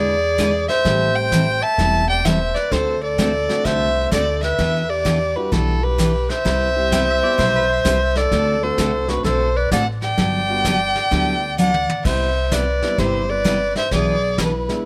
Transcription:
Already playing: upright bass E2, steel-string acoustic guitar D3 G#3 B3 E4 G#4, clarinet G#4, fiddle D5
0.38 steel-string acoustic guitar D3 G#3 B3 E4 G#4, kick, snare, hi-hat pedal
0.69 clarinet C5, fiddle E5, snare
0.85 upright bass A1, steel-string acoustic guitar E3 G3 C4 E4 A4, upright piano G3 A3 C4 G4, brush sweep, kick, snare
1.16 clarinet C5, fiddle G5
1.32 steel-string acoustic guitar E3 G3 C4 E4 A4, kick, snare, hi-hat pedal
1.62 clarinet E5, fiddle A5
1.78 upright bass E1, steel-string acoustic guitar E3 G3 C4 E4 A4, upright piano A3 B3 C4 G4, brush sweep, kick, snare
2.09 clarinet D5, fiddle G5
2.25 steel-string acoustic guitar E3 G3 C4 E4 A4, clarinet C5, fiddle E5, kick, snare, hi-hat pedal
2.55 clarinet B4, fiddle D5, snare
2.71 upright bass D2, steel-string acoustic guitar D3 A3 C4 F#4 A4, clarinet A4, fiddle C5, brush sweep, kick, snare
3.03 clarinet A4, fiddle D5
3.18 steel-string acoustic guitar D3 A3 C4 F#4 A4, kick, snare, hi-hat pedal
3.48 upright piano A3 C4 D4 F#4, snare
3.65 upright bass C2, steel-string acoustic guitar D3 A3 C4 F#4 A4, clarinet C5, fiddle E5, brush sweep, kick, snare
4.12 upright bass D2, steel-string acoustic guitar D3 A3 C4 F#4 A4, clarinet A4, fiddle D5, kick, snare, hi-hat pedal
4.43 clarinet B4, fiddle E5, snare
4.59 upright bass E2, steel-string acoustic guitar E3 B3 D4 G4, brush sweep, kick, snare
4.90 clarinet G4, fiddle D5
5.05 steel-string acoustic guitar E3 B3 D4 G4, kick, snare, hi-hat pedal
5.35 upright piano G3 D4 E4 F#4, clarinet G4, fiddle B4
5.52 upright bass B1, steel-string acoustic guitar E3 B3 D4 G4, clarinet E4, fiddle A4, brush sweep, kick, snare
5.83 clarinet G4, fiddle B4
5.98 steel-string acoustic guitar E3 B3 D4 G4, kick, snare, hi-hat pedal
6.30 clarinet C5, fiddle E5, snare
6.45 upright bass C2, steel-string acoustic guitar C3 G3 B3 E4 G4, brush sweep, kick, snare
6.75 upright piano G3 C4 E4 G4
6.92 steel-string acoustic guitar C3 G3 B3 E4 G4, pedal steel guitar G5, kick, snare, hi-hat pedal
7.09 pedal steel guitar E5
7.23 upright piano B3 C4 E4 G4, pedal steel guitar D5
7.38 upright bass B1, steel-string acoustic guitar C3 G3 B3 E4 G4, pedal steel guitar C5, brush sweep, kick, snare
7.56 pedal steel guitar B4
7.70 pedal steel guitar C5
7.85 upright bass C2, steel-string acoustic guitar C3 G3 B3 E4 G4, kick, snare, hi-hat pedal
8.16 clarinet A4, fiddle D5, snare
8.31 upright bass D2, steel-string acoustic guitar D3 A3 C4 F#4 A4, brush sweep, kick, snare
8.62 upright piano A3 C4 D4 F#4, clarinet A4, fiddle C5
8.78 upright bass C2, steel-string acoustic guitar D3 A3 C4 F#4 A4, kick, snare, hi-hat pedal
9.08 upright piano A3 C4 D4 F#4, clarinet F#4, fiddle B4, snare
9.24 upright bass B1, steel-string acoustic guitar D3 A3 C4 F#4 A4, clarinet A4, fiddle C5, brush sweep, kick, snare
9.56 clarinet B4, fiddle D5
9.71 upright bass A1, steel-string acoustic guitar D3 A3 C4 F#4 A4, clarinet D5, fiddle F#5, kick, snare, hi-hat pedal
10.02 clarinet D5, fiddle G5, snare
10.18 upright bass G1, steel-string acoustic guitar D3 F#3 B3 D4 G4, brush sweep, kick, snare
10.49 upright piano G3 B3 D4 F#4
10.65 steel-string acoustic guitar D3 F#3 B3 D4 G4, kick, snare, hi-hat pedal
10.95 snare
11.11 upright bass D2, steel-string acoustic guitar D3 F#3 B3 D4 G4, upright piano G3 B3 D4 E4, brush sweep, kick, snare
11.58 steel-string acoustic guitar D3 F#3 B3 D4 G4, clarinet D5, fiddle F#5, hi-hat pedal
11.74 high tom
11.89 high tom
12.05 upright bass C2, steel-string acoustic guitar C3 G3 B3 E4 G4, clarinet C5, fiddle E5, brush sweep, kick, snare, crash
12.52 steel-string acoustic guitar C3 G3 B3 E4 G4, clarinet B4, fiddle D5, kick, snare, hi-hat pedal
12.82 upright piano G3 B3 C4 E4, snare
12.98 upright bass G1, steel-string acoustic guitar C3 G3 B3 E4 G4, clarinet G4, fiddle C5, brush sweep, kick, snare
13.30 clarinet B4, fiddle D5
13.45 steel-string acoustic guitar C3 G3 B3 E4 G4, kick, snare, hi-hat pedal
13.76 clarinet C5, fiddle E5, snare
13.91 upright bass B1, steel-string acoustic guitar B2 E3 B3 D4 G#4, clarinet G#4, fiddle D5, brush sweep, kick, snare
14.38 steel-string acoustic guitar B2 E3 B3 D4 G#4, clarinet E4, fiddle B4, kick, snare, hi-hat pedal
14.68 upright piano G#3 B3 D4 E4, snare

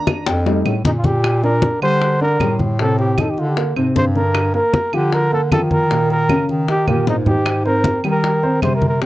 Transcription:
Already playing: grand piano D#3 A#3 D4 A#5
0.07 high bongo, high conga, claves
0.26 bass clarinet F2, grand piano G5, high bongo, high conga
0.46 grand piano G3 A3 D#4, high bongo, high conga
0.65 bass clarinet A2, low bongo, high conga, claves
0.84 bass clarinet A#2, trumpet D#4, low bongo, high conga
0.98 trumpet F4
1.04 trumpet G4, low bongo, high conga
1.24 high bongo, high conga, claves
1.43 grand piano D4 D5, trumpet A#4, high bongo, high conga
1.62 high bongo, high conga
1.81 bass clarinet D3, grand piano G3 G4, trumpet C5, high bongo, high conga, claves
2.01 high bongo, high conga
2.21 grand piano D4 D5, trumpet A#4, high conga
2.40 bass clarinet A2, grand piano G3 G4, high bongo, low bongo, high conga, claves
2.59 high bongo, high conga
2.79 grand piano C3 C4, trumpet A4, high bongo, high conga
2.98 trumpet G4, high bongo, high conga
3.18 grand piano D#3 D#4, trumpet A4, high bongo, high conga, claves
3.30 trumpet G4
3.37 bass clarinet D3, trumpet F4, high bongo, high conga
3.48 trumpet G4
3.57 grand piano A#3 A#4, high bongo, high conga
3.76 bass clarinet G#2, grand piano C3 C4, high conga, claves
3.95 bass clarinet G2, trumpet C5, high bongo, low bongo, high conga
4.15 grand piano D3 D4, trumpet A#4, high bongo
4.34 high bongo, high conga, claves
4.54 grand piano A#3 A#4, trumpet A#4, high bongo, high conga
4.74 high bongo, high conga
4.93 bass clarinet D3, grand piano F3 F4, trumpet G4, high bongo, high conga, claves
5.12 trumpet A#4, high bongo, high conga
5.32 grand piano A#3 A#4, trumpet A4, high conga
5.51 bass clarinet D#3, grand piano F3 F4, trumpet A4, high bongo, low bongo, high conga, claves
5.71 trumpet A#4, high bongo, high conga
5.90 grand piano A#2 A#3, high bongo, high conga
6.10 trumpet A#4, high bongo, high conga
6.29 grand piano C#3 C#4, high bongo, high conga, claves
6.49 bass clarinet D#3, high bongo, high conga
6.68 grand piano D#3 D#4, trumpet G4, high bongo, high conga
6.87 grand piano A#2 A#3, trumpet G4, high conga, claves
7.07 bass clarinet G#2, trumpet D#4, high bongo, low bongo
7.26 grand piano D#3 D#4, trumpet G4, high bongo, low conga
7.46 high bongo, high conga, claves
7.65 grand piano C4 C5, trumpet A#4, high bongo, high conga
7.84 high bongo, high conga
8.04 bass clarinet D#3, grand piano G3 G4, high bongo, high conga, claves
8.11 trumpet A#4
8.23 high bongo, high conga
8.43 grand piano C4 C5, high conga
8.62 bass clarinet C3, grand piano G3 G4, trumpet C5, high bongo, low bongo, high conga, claves
8.76 trumpet A#4
8.82 high bongo, high conga
8.88 trumpet A#4
9.01 grand piano C3 C4, trumpet G4, high bongo, high conga

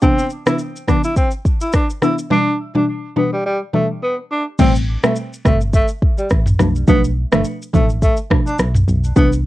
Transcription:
0.02 synth pluck C3 E3 B3 D4, tenor saxophone C4, kick, shaker
0.18 shaker
0.30 shaker
0.46 synth pluck C3 E3 B3 D4, tenor saxophone E4, cross-stick, shaker
0.58 shaker
0.76 shaker
0.88 synth pluck C3 E3 B3 D4, tenor saxophone D4, kick, cross-stick, shaker
1.04 tenor saxophone E4, shaker
1.16 tenor saxophone C4, kick, shaker
1.31 shaker
1.45 kick, shaker
1.61 tenor saxophone E4, shaker
1.73 tenor saxophone D4, kick, cross-stick, shaker
1.90 shaker
2.02 synth pluck C3 E3 B3 D4, tenor saxophone E4, cross-stick, shaker
2.18 shaker
2.30 synth pluck B2 E3 G3 D4, tenor saxophone D4
2.75 synth pluck B2 E3 G3 D4, tenor saxophone D4
3.16 synth pluck B2 E3 G3 D4, tenor saxophone B3
3.33 tenor saxophone G3
3.46 tenor saxophone G3
3.73 synth pluck B2 E3 G3 D4, tenor saxophone A3
4.03 tenor saxophone B3
4.31 tenor saxophone D4
4.59 fm bass A1, synth pluck B2 G3 A3 C4, tenor saxophone C4, kick, crash, shaker
4.76 shaker
5.03 synth pluck B2 G3 A3 C4, tenor saxophone A3, cross-stick, shaker
5.16 shaker
5.33 shaker
5.45 fm bass G1, synth pluck B2 G3 A3 C4, tenor saxophone A3, kick, cross-stick, shaker
5.61 shaker
5.74 tenor saxophone A3, kick, shaker
5.88 shaker
6.02 kick
6.18 tenor saxophone G3, shaker
6.30 fm bass A1, kick, cross-stick, shaker
6.46 mid tom, shaker
6.59 fm bass B1, synth pluck B2 F3 A3 D4, cross-stick, mid tom, shaker
6.76 shaker
6.88 fm bass B1, synth pluck B2 F3 A3 D4, tenor saxophone B3, kick, shaker
7.04 shaker
7.32 fm bass G1, synth pluck B2 F3 A3 D4, tenor saxophone A3, cross-stick, shaker
7.44 shaker
7.62 shaker
7.73 fm bass A1, synth pluck B2 F3 A3 D4, tenor saxophone A3, kick, shaker
7.89 shaker
8.02 tenor saxophone A3, kick, shaker
8.17 shaker
8.30 synth pluck B2 F3 A3 D4, kick, cross-stick
8.47 tenor saxophone D4, shaker
8.59 fm bass B1, cross-stick, shaker
8.75 mid tom, shaker
8.88 fm bass B1, mid tom, shaker
9.04 shaker
9.16 fm bass C2, synth pluck C3 E3 B3 D4, tenor saxophone B3, kick, shaker
9.33 shaker

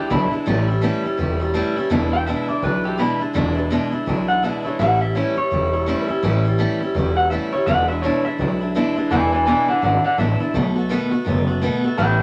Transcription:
Already playing: steel-string acoustic guitar D4 E4, clean electric guitar G4
0.10 upright bass B1, steel-string acoustic guitar E2 B2 E3 G#3 D4 E4, clean electric guitar E4
0.32 steel-string acoustic guitar E3 G#3 D4 E4, muted upright bass stroke
0.46 upright bass A1, steel-string acoustic guitar A2 E3 G3 C#4 E4
0.68 steel-string acoustic guitar G3 C#4 E4
0.82 steel-string acoustic guitar A2 E3 G3 C#4 E4
1.03 steel-string acoustic guitar G3 C#4 E4, muted upright bass stroke
1.17 upright bass E1, steel-string acoustic guitar E3 G3 C#4 E4
1.40 steel-string acoustic guitar G3 C#4 E4
1.54 steel-string acoustic guitar A2 E3 G3 C#4 E4
1.76 steel-string acoustic guitar G3 C#4 E4, muted upright bass stroke
1.90 upright bass E1, steel-string acoustic guitar E2 B2 E3 G#3 D4 E4
2.12 steel-string acoustic guitar E3 G#3 D4 E4, clean electric guitar G5
2.26 steel-string acoustic guitar E2 B2 E3 G#3 D4 E4, clean electric guitar E5
2.48 steel-string acoustic guitar E3 G#3 D4 E4, clean electric guitar D5, muted upright bass stroke
2.62 upright bass B1, steel-string acoustic guitar E3 G#3 D4 E4, clean electric guitar B4
2.84 steel-string acoustic guitar E3 G#3 D4 E4, clean electric guitar G4
2.98 steel-string acoustic guitar E2 B2 E3 G#3 D4 E4, clean electric guitar E4
3.20 steel-string acoustic guitar E3 G#3 D4 E4, muted upright bass stroke
3.33 upright bass E1, steel-string acoustic guitar E2 B2 E3 G#3 D4 E4
3.55 steel-string acoustic guitar E3 G#3 D4 E4
3.70 steel-string acoustic guitar E2 B2 E3 G#3 D4 E4
3.92 steel-string acoustic guitar E3 G#3 D4 E4, muted upright bass stroke
4.06 upright bass B1, steel-string acoustic guitar E3 G#3 D4 E4
4.28 steel-string acoustic guitar E3 G#3 D4 E4, clean electric guitar F#5
4.43 steel-string acoustic guitar E2 B2 E3 G#3 D4 E4, clean electric guitar E5
4.64 steel-string acoustic guitar E3 G#3 D4 E4, clean electric guitar C#5, muted upright bass stroke
4.79 upright bass A1, steel-string acoustic guitar A2 E3 G3 C#4 E4, clean electric guitar F#5
5.01 steel-string acoustic guitar G3 C#4 E4, clean electric guitar E5
5.15 steel-string acoustic guitar A2 E3 G3 C#4 E4, clean electric guitar C#5
5.37 steel-string acoustic guitar G3 C#4 E4, clean electric guitar C#5, muted upright bass stroke
5.50 upright bass E1, steel-string acoustic guitar E3 G3 C#4 E4
5.73 steel-string acoustic guitar G3 C#4 E4
5.86 steel-string acoustic guitar A2 E3 G3 C#4 E4
6.08 steel-string acoustic guitar G3 C#4 E4, muted upright bass stroke
6.23 upright bass A1, steel-string acoustic guitar A2 E3 G3 C#4 E4
6.45 steel-string acoustic guitar G3 C#4 E4
6.58 steel-string acoustic guitar A2 E3 G3 C#4 E4
6.80 steel-string acoustic guitar G3 C#4 E4, muted upright bass stroke
6.95 upright bass E1, steel-string acoustic guitar E3 G3 C#4 E4
7.16 steel-string acoustic guitar G3 C#4 E4, clean electric guitar F#5
7.30 steel-string acoustic guitar A2 E3 G3 C#4 E4, clean electric guitar E5
7.52 steel-string acoustic guitar G3 C#4 E4, clean electric guitar C#5, muted upright bass stroke
7.66 upright bass E1, steel-string acoustic guitar E2 B2 E3 G#3 D4 E4, clean electric guitar F#5
7.88 steel-string acoustic guitar E3 G#3 D4 E4, clean electric guitar E5
8.02 steel-string acoustic guitar E2 B2 E3 G#3 D4 E4, clean electric guitar C#5
8.24 steel-string acoustic guitar E3 G#3 D4 E4, clean electric guitar E5, muted upright bass stroke
8.38 upright bass B1, steel-string acoustic guitar E3 G#3 D4 E4
8.61 steel-string acoustic guitar E3 G#3 D4 E4
8.75 steel-string acoustic guitar E2 B2 E3 G#3 D4 E4
8.96 steel-string acoustic guitar E3 G#3 D4 E4, muted upright bass stroke
9.11 upright bass E1, steel-string acoustic guitar E2 B2 E3 G#3 D4 E4, clean electric guitar B4 G#5
9.33 steel-string acoustic guitar E3 G#3 D4 E4, clean electric guitar B4 G#5
9.46 steel-string acoustic guitar E2 B2 E3 G#3 D4 E4, clean electric guitar B4 G#5
9.68 steel-string acoustic guitar E3 G#3 D4 E4, clean electric guitar D5 F#5, muted upright bass stroke
9.82 upright bass G#1, steel-string acoustic guitar E3 G#3 D4 E4, clean electric guitar D5 F#5
10.04 steel-string acoustic guitar E3 G#3 D4 E4, clean electric guitar D5 F#5, muted upright bass stroke
10.18 upright bass A1, steel-string acoustic guitar E2 B2 E3 G#3 D4 E4, clean electric guitar E5
10.40 steel-string acoustic guitar E3 G#3 D4 E4, muted upright bass stroke
10.54 upright bass B1, steel-string acoustic guitar B2 D#3 A3 B3 F#4
10.76 steel-string acoustic guitar A3 B3 F#4
10.89 steel-string acoustic guitar B2 D#3 A3 B3 F#4
11.11 steel-string acoustic guitar A3 B3 F#4, muted upright bass stroke
11.25 upright bass F#1, steel-string acoustic guitar D#3 A3 B3 F#4
11.47 steel-string acoustic guitar A3 B3 F#4
11.61 steel-string acoustic guitar B2 D#3 A3 B3 F#4
11.84 steel-string acoustic guitar A3 B3 F#4, muted upright bass stroke
11.97 upright bass A1, steel-string acoustic guitar A2 E3 G3 C#4 E4, clean electric guitar B4 G5
12.19 steel-string acoustic guitar E4

